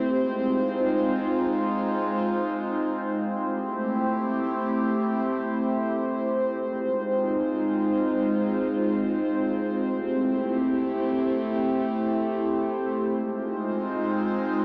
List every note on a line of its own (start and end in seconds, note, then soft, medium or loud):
0.00 3.28 C4 medium
0.00 3.28 C5 medium
0.06 3.29 G#3 medium
0.06 3.29 D#4 medium
0.06 3.29 F4 medium
3.32 6.55 A3 medium
3.32 13.08 C4 medium
3.32 6.55 E4 medium
3.32 6.55 G4 medium
3.32 13.08 C5 medium
6.58 9.82 G#3 medium
6.58 9.82 D#4 medium
6.58 9.82 F4 medium
9.85 13.08 A3 medium
9.85 13.08 E4 medium
9.85 13.08 G4 medium
13.11 14.65 G#3 medium
13.11 14.65 C4 medium
13.11 14.65 D#4 medium
13.11 14.65 F4 medium
13.11 14.65 C5 medium